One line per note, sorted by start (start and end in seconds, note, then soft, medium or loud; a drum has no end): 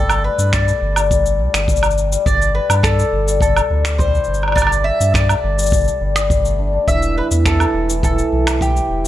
0.00 0.30 G1 medium
0.00 0.23 G3 medium
0.00 1.50 A3 medium
0.00 0.11 E4 medium
0.00 0.38 G4 medium
0.00 0.24 A4 loud
0.10 0.67 A4 medium
0.10 cabasa soft
0.10 low woodblock medium
0.24 0.52 G3 medium
0.24 0.53 B4 medium
0.38 0.73 G2 medium
0.38 1.53 G4 medium
0.38 cabasa medium
0.53 0.95 G3 loud
0.53 1.94 D5 medium
0.53 finger snap medium
0.53 kick loud
0.53 cabasa medium
0.68 1.25 A4 medium
0.68 cabasa soft
0.82 1.10 G1 loud
0.96 1.10 G3 medium
0.96 cabasa medium
0.96 low woodblock medium
1.11 1.41 G1 medium
1.11 1.38 G3 medium
1.11 kick loud
1.11 cabasa medium
1.25 1.82 A4 medium
1.25 cabasa soft
1.39 1.48 C2 medium
1.39 1.67 G3 medium
1.54 2.17 G1 loud
1.54 2.69 G4 medium
1.54 finger snap medium
1.54 cabasa medium
1.68 2.11 G3 loud
1.68 kick loud
1.68 cabasa medium
1.76 cabasa soft
1.83 2.40 A4 medium
1.83 cabasa soft
1.83 low woodblock medium
1.91 cabasa soft
1.98 cabasa soft
2.12 2.25 G3 loud
2.12 cabasa medium
2.26 2.60 G1 medium
2.26 2.53 G3 medium
2.26 2.54 D5 loud
2.26 kick medium
2.26 cabasa medium
2.41 2.98 A4 medium
2.41 cabasa soft
2.54 2.82 G3 medium
2.54 2.85 B4 medium
2.69 3.04 G2 loud
2.69 3.84 G4 medium
2.69 cabasa medium
2.69 low woodblock medium
2.83 3.26 G3 loud
2.83 3.40 A4 medium
2.83 finger snap medium
2.83 kick loud
2.83 cabasa medium
2.98 3.55 A4 medium
2.98 cabasa soft
3.13 3.61 G1 loud
3.27 3.40 G3 loud
3.27 cabasa medium
3.41 3.69 G3 medium
3.41 4.01 A4 medium
3.41 kick loud
3.41 cabasa medium
3.56 4.13 A4 medium
3.56 cabasa soft
3.56 low woodblock medium
3.70 4.19 D2 medium
3.70 3.98 G3 medium
3.84 5.00 G4 medium
3.84 finger snap medium
3.84 cabasa medium
3.98 4.41 G3 loud
3.98 4.53 C5 medium
3.98 kick loud
3.98 cabasa medium
4.13 4.71 A4 medium
4.13 cabasa soft
4.24 4.91 G1 medium
4.24 cabasa soft
4.34 cabasa soft
4.42 4.56 G3 loud
4.42 low woodblock soft
4.48 low woodblock soft
4.52 4.86 D5 loud
4.52 kick medium
4.52 low woodblock soft
4.57 4.84 G3 medium
4.57 cabasa medium
4.57 low woodblock medium
4.62 low woodblock medium
4.67 low woodblock medium
4.71 5.29 A4 medium
4.71 cabasa soft
4.84 5.13 G3 medium
4.84 5.12 E5 loud
5.00 5.35 G2 loud
5.00 6.29 G4 medium
5.00 cabasa medium
5.14 5.57 G3 loud
5.14 6.54 D5 medium
5.14 finger snap medium
5.14 kick loud
5.14 cabasa medium
5.29 5.86 A4 medium
5.29 cabasa soft
5.29 low woodblock medium
5.44 5.72 G1 loud
5.58 5.71 G3 medium
5.58 cabasa medium
5.63 cabasa medium
5.66 cabasa soft
5.70 5.90 G1 medium
5.70 6.00 G3 medium
5.70 kick loud
5.70 cabasa soft
5.73 cabasa medium
5.77 cabasa soft
5.80 cabasa soft
5.84 8.79 A4 medium
5.84 cabasa soft
5.88 cabasa soft
6.01 6.79 G1 medium
6.01 6.14 G3 medium
6.15 6.93 G3 medium
6.15 finger snap medium
6.15 cabasa medium
6.15 low woodblock medium
6.30 7.59 G4 medium
6.30 kick loud
6.30 cabasa soft
6.44 9.08 A3 medium
6.44 cabasa soft
6.59 6.72 D4 medium
6.73 9.08 D4 medium
6.88 7.22 E1 loud
6.88 7.15 E3 medium
6.88 7.15 E5 loud
6.88 kick medium
6.88 cabasa medium
7.03 cabasa soft
7.16 7.44 E3 medium
7.16 7.25 B4 medium
7.31 7.65 E2 medium
7.31 8.46 E4 medium
7.31 cabasa medium
7.45 7.88 E3 loud
7.45 8.00 A4 loud
7.45 finger snap medium
7.45 kick loud
7.45 cabasa medium
7.60 7.74 G4 medium
7.60 cabasa soft
7.60 low woodblock medium
7.74 8.23 E1 loud
7.74 8.75 G4 medium
7.89 8.02 E3 loud
7.89 cabasa medium
8.03 8.31 E3 medium
8.03 8.62 A4 medium
8.03 kick medium
8.03 cabasa medium
8.19 cabasa soft
8.32 8.81 B1 medium
8.32 8.60 E3 medium
8.47 9.08 E4 medium
8.47 finger snap medium
8.47 cabasa medium
8.47 low woodblock medium
8.61 9.03 E3 loud
8.61 9.08 G4 medium
8.61 kick loud
8.61 cabasa soft
8.75 8.90 G4 medium
8.75 cabasa soft
8.90 9.08 E1 medium
8.90 9.08 G4 medium
9.04 9.08 E3 loud